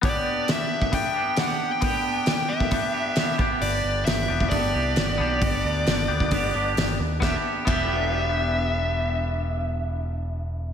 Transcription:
<<
  \new Staff \with { instrumentName = "Lead electric guitar" } { \time 4/4 \key e \minor \tempo 4 = 134 d''4 e''4 g''4 fis''8. g''16~ | g''4. e''2 r8 | d''4 e''4 d''2~ | d''2. r4 |
e''16 r8. e''2.~ | e''1 | }
  \new Staff \with { instrumentName = "Clean electric guitar" } { \time 4/4 \key e \minor <b d' g'>2 <b d' g'>2 | <b d' g'>2 <b d' g'>4. <b d' g'>8~ | <b d' g'>4. <b d' g'>2 <b d' g'>8~ | <b d' g'>4. <b d' g'>2 r8 |
<b d' g'>8 r8 <b d' g'>2.~ | <b d' g'>1 | }
  \new Staff \with { instrumentName = "Clean electric guitar" } { \time 4/4 \key e \minor <b d' g'>2~ <b d' g'>8 <b d' g'>8 <b d' g'>4 | <b d' g'>2~ <b d' g'>8 <b d' g'>8 <b d' g'>8 <b d' g'>8~ | <b d' g'>2 <b d' g'>8 <b d' g'>4 <b d' g'>8~ | <b d' g'>2 <b d' g'>8 <b d' g'>4 r8 |
<b d' g'>8 r8 <b d' g'>2.~ | <b d' g'>1 | }
  \new Staff \with { instrumentName = "Picked electric bass" } { \clef bass \time 4/4 \key e \minor r1 | r1 | g,,8 g,,8 g,,8 e,,8 g,,8 c,8 g,,8 b,,8 | g,,8 d,8 g,,8 d,8 g,,8 g,,8 g,,8 dis,8 |
e,,8 r8 e,,2.~ | e,,1 | }
  \new DrumStaff \with { instrumentName = "Drums" } \drummode { \time 4/4 <hho bd>4 <hho sn>8. bd16 <hho bd>4 <hho sn>4 | <hho bd>4 <hho sn>8. bd16 <hho bd>4 <hho sn>8 bd8 | hho4 <hho sn>8. bd16 <hho bd>4 <hho sn>4 | <hho bd>4 <hho sn>8. bd16 <hho bd>4 <hho sn>4 |
<bd sn>4 <cymc bd>4 r4 r4 | r4 r4 r4 r4 | }
>>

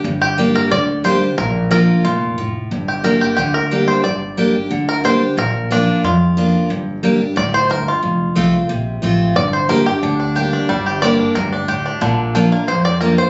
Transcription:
<<
  \new Staff \with { instrumentName = "Five-string banjo" } { \time 4/4 \key g \minor \tempo 4 = 180 << { r8 g'4 bes'8 d''4 c''4 | bes'4 bes'4 f'4. r8 | r8 g'8 bes'8 g'8 g'8 bes'4 c''8 | d''4. r4 bes'8 c''4 |
bes'4 d'4 f'2~ | f'8 r4. d''8 c''8 bes'8 f'8~ | f'2 r2 | d''8 c''8 bes'8 g'2~ g'8 |
r4 d''4 bes'8 r4. | r2 c''8 d''8 bes'8 c''8 | } \\ { r1 | r1 | r1 | r1 |
r1 | r1 | r1 | r2 d'8 d'8 g'8 d'8 |
g8 g'4 d'4 d'8 g'8 d'8 | d4 d'8 bes4. r4 | } >> }
  \new Staff \with { instrumentName = "Steel-string acoustic guitar" } { \time 4/4 \key g \minor << { r4 <g bes d' g'>4 r4 <g bes d' g'>8 <d' g'>8 | r4 <f bes d' f'>4 r2 | r4 <g bes d' g'>4 r4 <g bes d' g'>4 | r4 <g bes d' g'>8 <d' g'>8 r4 <g bes d' g'>8 <d' g'>8 |
r4 <f bes d' f'>4 r4 <f bes d' f'>4 | r4 <g bes d' g'>8 <d' g'>8 r2 | r4 <f a c' f'>8 <c' f'>8 r4 <f a c' f'>4 | r4 <g bes d' g'>8 d'8 r4 <g bes d' g'>4 |
r4 <g bes d' g'>4 r2 | r4 <f bes d' f'>8 <d' f'>8 r4 <f bes d' f'>4 | } \\ { g,2 d2 | bes,2 bes,4 a,4 | g,2 d2 | g,2 d2 |
bes,2 f,2 | g,2 a,4 g,4 | f,2 c2 | g,2 d2 |
g,2 g,4 a,4 | bes,2 f,2 | } >> }
  \new Staff \with { instrumentName = "Upright bass" } { \clef bass \time 4/4 \key g \minor g,,2 d,2 | bes,,2 f,,2 | g,,2 d,2 | g,,2 d,2 |
bes,,2 f,2 | g,,2 d,2 | f,,4 c,4 bes,,4 a,,4 | g,,2 d,2 |
g,,2 d,2 | bes,,2 f,2 | }
>>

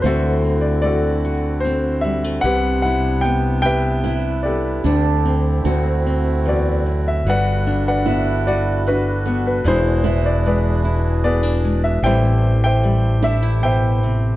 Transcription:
<<
  \new Staff \with { instrumentName = "Grand piano" } { \time 3/4 \key d \mixolydian \tempo 4 = 75 << { c''8. d''16 d''4 c''8 e''8 | fis''8 fis''8 g''8 g''4 d''8~ | d''8 r4. d''8. e''16 | fis''8. fis''8. d''8 b'8. b'16 |
c''8. d''16 d''4 d''8. e''16 | g''8. g''8. e''8 g''4 | } \\ { <fis' a'>4 <fis' a'>4. r8 | b'4. <b' e''>4 <g' a'>8~ | <g' a'>4 r4 <fis' a'>4 | <b' d''>8. <b' d''>4~ <b' d''>16 <d' fis'>4 |
gis'4 <gis' b'>4 <gis' b'>4 | <c'' e''>8. <c'' e''>4~ <c'' e''>16 <c'' e''>4 | } >> }
  \new Staff \with { instrumentName = "Steel-string acoustic guitar" } { \time 3/4 \key d \mixolydian <e' a'>4 r2 | r2 e'4 | d'4 c'4 r4 | r4 e'4 r8 fis'8~ |
fis'8 e'4 r4. | r4. e'4 r8 | }
  \new Staff \with { instrumentName = "Harmonium" } { \time 3/4 \key d \mixolydian << { <d e'>2. | <c d'>2. | <d g'>4 <d fis'>2 | <g a' b'>2. |
<e gis'>2. | <g' c''>2. | } \\ { <c' fis'>2. | b2. | c'2. | fis'2.~ |
fis'2. | a2. | } >> }
  \new Staff \with { instrumentName = "Harmonium" } { \time 3/4 \key d \mixolydian a2. | g2. | a2. | d'2. |
b,2. | r2. | }
  \new Staff \with { instrumentName = "Nylon-string guitar" } { \time 3/4 \key d \mixolydian << { <d a c' fis'>8 c'8 a8 fis'8 c'8 g16 a16 | g'8 e'8 b8 g'8 e'8 b8 | d'8 c'8 fis'8 c'4. | fis'8 d'8 b8 fis'8 d'8 b8 |
<e gis d' e'>8 d'8 gis8 e'8 b16 d'16 gis8 | <e g c' e'>4 g8 d'16 e'4~ e'16 | } \\ { d,2. | c2. | d,4 d,4 e,8 fis,8 | g,2. |
e,2. | a,2 b,8 c8 | } >> }
  \new Staff \with { instrumentName = "Fretless electric bass" } { \clef bass \time 3/4 \key d \mixolydian d,2. | c,2. | d,4 d,2 | g,,2. |
e,,2. | a,,2. | }
>>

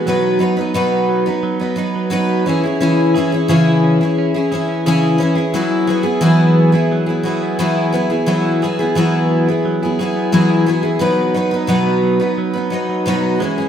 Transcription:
<<
  \new Staff \with { instrumentName = "Twelve-string acoustic guitar" } { \time 4/4 \key b \mixolydian \tempo 4 = 88 <b, fis b dis' b'>8 <fis b dis' b'>16 <b dis' b'>16 <b, fis b dis' b'>8. <b dis' b'>8 <b dis' b'>16 <fis b dis' b'>8 <b, fis b dis' b'>8 <e cis' e' gis'>16 <cis' e' gis'>16 | <cis e cis' e' gis'>8 <e cis' e' gis'>16 <cis' e' gis'>16 <cis e cis' e' gis'>8. <cis' e' gis'>8 <cis' e' gis'>16 <e cis' e' gis'>8 <cis e cis' e' gis'>8 <e cis' e' gis'>16 <cis' e' gis'>16 | <e fis b e' gis'>8 <fis b e' gis'>16 <b e' gis'>16 <e fis b e' gis'>8. <b e' gis'>8 <b e' gis'>16 <fis b e' gis'>8 <e fis b e' gis'>8 <fis b e' gis'>16 <b e' gis'>16 | <e fis b e' gis'>8 <fis b e' gis'>16 <b e' gis'>16 <e fis b e' gis'>8. <e' gis'>8 <b e' gis'>16 <fis b e' gis'>8 <e fis b e' gis'>8 <fis b e' gis'>16 <b e' gis'>16 |
<b, fis b dis' b'>8 <fis b dis' b'>16 <b dis' b'>16 <b, fis b dis' b'>8. <b dis' b'>8 <b dis' b'>16 <fis b dis' b'>8 <b, fis b dis' b'>8 <e cis' e' gis'>16 <cis' e' gis'>16 | }
  \new Staff \with { instrumentName = "Clean electric guitar" } { \time 4/4 \key b \mixolydian fis16 b16 dis'16 fis16 dis'16 b16 fis16 b16 fis16 b16 dis'16 fis16 dis'16 b16 cis'16 e'16 | cis'16 e'16 gis'16 cis'16 gis'16 e'16 cis'16 e'16 cis'16 e'16 gis'16 cis'16 gis'16 e'16 cis'16 e'16 | fis16 e'16 gis'16 b16 gis'16 e'16 b16 e'16 fis16 e'16 gis'16 b16 gis'16 e'16 b16 e'16 | fis16 e'16 gis'16 b16 gis'16 e'16 b16 e'16 fis16 e'16 gis'16 b16 gis'16 e'16 b16 e'16 |
fis16 b16 dis'16 fis16 dis'16 b16 fis16 b16 fis16 b16 dis'16 fis16 dis'16 b16 gis16 cis'16 | }
>>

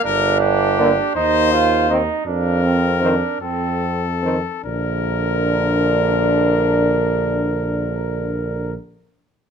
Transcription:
<<
  \new Staff \with { instrumentName = "Trumpet" } { \time 6/8 \key bes \major \tempo 4. = 49 bes'8 g'4 c''4 r8 | bes'4. a'4. | bes'2.~ | bes'2. | }
  \new Staff \with { instrumentName = "Flugelhorn" } { \time 6/8 \key bes \major d'4. ees'8 f'8 ees'8 | d'8 c'8 d'8 c'8. r8. | bes'2.~ | bes'2. | }
  \new Staff \with { instrumentName = "French horn" } { \time 6/8 \key bes \major r4 bes16 r4 r16 c'16 r16 | r4 c'16 r4 r16 c'16 r16 | d'2.~ | d'2. | }
  \new Staff \with { instrumentName = "Trombone" } { \clef bass \time 6/8 \key bes \major r4 d16 r4 r16 ees16 r16 | r4 ees16 r4 r16 ees16 r16 | d2.~ | d2. | }
  \new Staff \with { instrumentName = "Bass trombone" } { \clef bass \time 6/8 \key bes \major g,,4. ees,4. | f,4. f,4. | bes,,2.~ | bes,,2. | }
>>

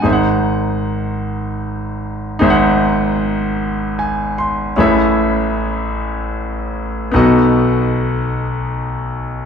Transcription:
\new Staff \with { instrumentName = "Grand piano" } { \time 6/8 \key gis \phrygian \tempo 4. = 51 << { r2. | r2 gis''8 bis''8 | r2. | r2. | } \\ { <gis,, gis, dis' gis' bis' e'' fis''>2. | <gis,, gis, dis' gis' bis' e'' fis''>2. | <a,, a, cis' e' gis' a' e''>2. | <b,, b, b dis' fis' a' dis''>2. | } >> }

